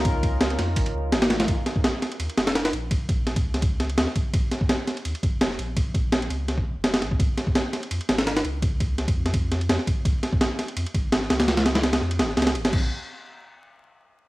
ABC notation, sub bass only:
X:1
M:4/4
L:1/16
Q:"Swing 16ths" 1/4=168
K:Bbm
V:1 name="Sub bass" clef=bass
D,,6 F,,2 A,,,2 D,,2 A,,,4 | B,,, z6 z E,, z F,,,4 B,,,2- | B,,,6 D,,6 E,, z3 | B,,, z6 z E,, z F,,,4 B,,,2- |
B,,,6 D,,4 B,,, F,,,3 B,,,2 | D,, z6 z F,, z A,,,4 D,,2- | D,,6 F,,6 F,, z3 | D,, z6 z F,, z A,,,4 D,,2- |
D,,6 F,,2 A,,,2 D,,2 A,,,2 B,,,2 | z16 |]